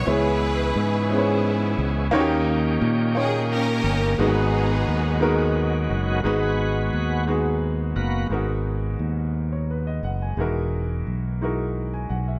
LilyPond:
<<
  \new Staff \with { instrumentName = "String section" } { \time 6/8 \key gis \minor \tempo 4. = 58 << { b'4. gis'4 r8 | r4. gis'8 ais'4 | gis'2 r4 | r2. |
r2. | r2. | } \\ { <e' gis'>4. <b e'>4. | r2 <cis' g'>4 | <b dis'>2 r4 | r2. |
r2. | r2. | } >> }
  \new Staff \with { instrumentName = "Grand piano" } { \time 6/8 \key gis \minor << { r2. | r2. | r2. | r2. |
r4. r16 cis''16 b'16 dis''16 fis''16 gis''16~ | gis''16 r2 gis''16 fis''16 e''16 | } \\ { <cis b cis' e' gis' cis''>4. <b cis' e' gis' bis' cis''>4. | <dis ais cis' dis' fis' g' cis''>4. <ais cis' dis' cis'' g''>4. | <gis, gis b dis' fis' b'>4. <gis b dis' fis' ais'>4. | <gis, gis b dis' fis' b'>4. <gis b dis' fis' gis'>4. |
<gis, gis b dis' fis' ais'>4. r4. | <e gis dis' e' fis' ais'>4. <gis dis' e' fis' ais'>4. | } >> }
  \new Staff \with { instrumentName = "Tonewheel organ" } { \time 6/8 \key gis \minor <e gis b cis' gis'>2. | <dis ais cis' g''>2. | <dis fis gis b fis'>2. | <gis b fis'>4. r4 <ais b fis'>8 |
r2. | r2. | }
  \new Staff \with { instrumentName = "Fingered electric bass" } { \clef bass \time 6/8 \key gis \minor cis,4 gis,4. cis,8 | dis,4 ais,4. g,,8 | gis,,4 dis,4. fis,,8 | gis,,4 dis,4. fis,,8 |
gis,,4 dis,4. fis,,8 | e,,4 b,,4. b,,8 | }
>>